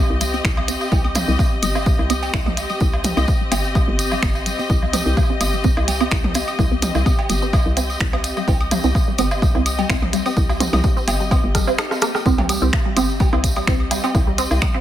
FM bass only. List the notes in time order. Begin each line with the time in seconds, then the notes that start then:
0.10 C2
0.45 C2
0.92 C2
1.28 C2
1.63 G1
1.99 C2
2.34 C2
2.81 C2
3.17 C2
3.52 G1
3.88 G1
4.23 G1
4.70 C2
5.06 C2
5.41 G1
5.77 C2
6.12 C2
6.59 C2
6.95 C2
7.30 G1
7.66 C2
8.00 C2
8.48 C2
8.84 C2
9.19 G1
9.55 C2
9.89 C2
10.37 C2
10.73 C2
11.07 G1
11.44 G1
12.26 C2
12.62 C2
12.96 G1
13.33 C2
13.67 C2
14.15 C2
14.51 C2